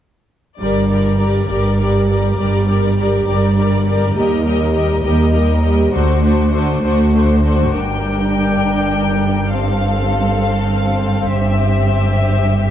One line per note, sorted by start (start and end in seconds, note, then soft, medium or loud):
0.59 1.39 G1 soft
0.59 1.39 G2 soft
0.59 0.89 G3 soft
0.59 0.89 G4 soft
0.59 0.89 A#4 soft
0.59 0.88 D5 soft
0.89 1.19 G3 soft
0.89 1.19 G4 soft
0.89 1.19 A#4 soft
0.89 1.18 D5 soft
1.19 1.49 G3 soft
1.19 1.50 G4 soft
1.19 1.48 A#4 soft
1.19 1.48 D5 soft
1.49 2.27 G1 soft
1.49 2.28 G2 soft
1.49 1.79 G3 soft
1.49 1.79 G4 soft
1.49 1.78 A#4 soft
1.49 1.78 D5 soft
1.79 2.09 G3 soft
1.79 2.09 G4 soft
1.79 2.08 A#4 soft
1.79 2.08 D5 soft
2.09 2.37 G3 soft
2.09 2.37 G4 soft
2.09 2.38 A#4 soft
2.09 2.38 D5 soft
2.38 3.16 G1 soft
2.38 3.16 G2 soft
2.38 2.66 G3 soft
2.38 2.67 G4 soft
2.38 2.67 A#4 soft
2.38 2.67 D5 soft
2.67 2.95 G3 soft
2.67 2.95 G4 soft
2.67 2.97 A#4 soft
2.67 2.97 D5 soft
2.96 3.26 G3 soft
2.96 3.25 G4 soft
2.96 3.27 A#4 soft
2.96 3.26 D5 soft
3.26 4.05 G1 soft
3.26 4.04 G2 soft
3.26 3.54 G3 soft
3.26 3.55 G4 soft
3.26 3.56 A#4 soft
3.26 3.56 D5 soft
3.55 3.84 G3 soft
3.55 3.84 G4 soft
3.55 3.86 A#4 soft
3.55 3.86 D5 soft
3.85 4.14 G3 soft
3.85 4.14 G4 soft
3.85 4.15 A#4 soft
3.85 4.15 D5 soft
4.15 4.93 D#2 soft
4.15 4.42 G3 soft
4.15 4.43 G4 soft
4.15 4.44 A#4 soft
4.15 4.45 D#5 soft
4.44 4.71 G3 soft
4.44 4.71 G4 soft
4.44 4.74 A#4 soft
4.44 4.73 D#5 soft
4.72 5.01 G3 soft
4.72 5.02 G4 soft
4.72 5.03 A#4 soft
4.72 5.02 D#5 soft
5.02 5.83 D#2 soft
5.02 5.30 G3 soft
5.02 5.30 G4 soft
5.02 5.32 A#4 soft
5.02 5.32 D#5 soft
5.31 5.61 G3 soft
5.31 5.61 G4 soft
5.31 5.62 A#4 soft
5.31 5.62 D#5 soft
5.62 5.92 G3 soft
5.62 5.92 G4 soft
5.62 5.93 A#4 soft
5.62 5.92 D#5 soft
5.93 6.72 D2 soft
5.93 6.22 A3 soft
5.93 6.22 D4 soft
5.93 6.22 F#4 soft
5.93 6.22 C5 soft
6.23 6.52 A3 soft
6.23 6.52 D4 soft
6.23 6.51 F#4 soft
6.23 6.50 C5 soft
6.51 6.80 A3 soft
6.51 6.80 D4 soft
6.51 6.81 F#4 soft
6.51 6.81 C5 soft
6.81 7.63 D2 soft
6.81 7.64 D2 soft
6.81 7.12 A3 soft
6.81 7.12 D4 soft
6.81 7.12 F#4 soft
6.81 7.12 C5 soft
7.13 7.42 A3 soft
7.13 7.43 D4 soft
7.13 7.43 F#4 soft
7.13 7.43 C5 soft
7.44 7.73 A3 soft
7.44 7.74 D4 soft
7.44 7.74 F#4 soft
7.44 7.74 C5 soft
7.73 11.29 G1 soft
7.73 11.28 G2 soft
7.73 9.50 D4 soft
7.73 9.50 A#4 soft
7.73 9.50 G5 soft
9.53 12.70 C4 soft
9.53 11.28 A4 soft
9.53 11.28 F5 soft
11.32 12.70 G1 soft
11.32 12.70 G2 soft
11.32 12.70 G4 soft
11.32 12.70 E5 soft